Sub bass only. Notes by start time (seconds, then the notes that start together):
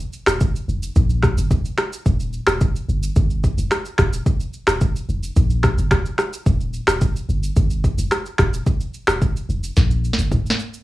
0.28 D#1
0.68 F1
0.96 A#1
1.38 G1
2.06 D#1
2.48 D#1
2.89 G1
3.16 G#1
3.58 F1
3.99 D#1
4.68 D#1
5.09 F1
5.36 A#1
5.78 G1
6.46 D#1
6.88 D#1
7.29 G1
7.57 G#1
7.98 F1
8.39 D#1
9.08 D#1
9.49 F1
9.77 A#1
10.18 G1